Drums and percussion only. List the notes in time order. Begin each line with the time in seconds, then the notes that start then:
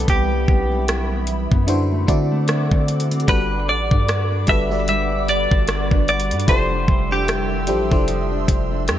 0.08 kick, closed hi-hat
0.48 kick
0.88 cross-stick, closed hi-hat
1.27 closed hi-hat
1.52 kick
1.68 closed hi-hat
2.08 kick, closed hi-hat
2.48 cross-stick, closed hi-hat
2.71 kick
2.88 closed hi-hat
3.00 closed hi-hat
3.11 closed hi-hat
3.20 closed hi-hat
3.28 kick, closed hi-hat
3.91 kick
4.08 cross-stick, closed hi-hat
4.47 kick, closed hi-hat
4.88 closed hi-hat
5.28 closed hi-hat
5.51 kick
5.68 cross-stick, closed hi-hat
5.91 kick
6.08 closed hi-hat
6.20 closed hi-hat
6.31 closed hi-hat
6.40 closed hi-hat
6.48 kick, closed hi-hat
6.88 kick
7.28 cross-stick, closed hi-hat
7.67 closed hi-hat
7.92 kick
8.08 closed hi-hat
8.48 kick, closed hi-hat
8.88 cross-stick, closed hi-hat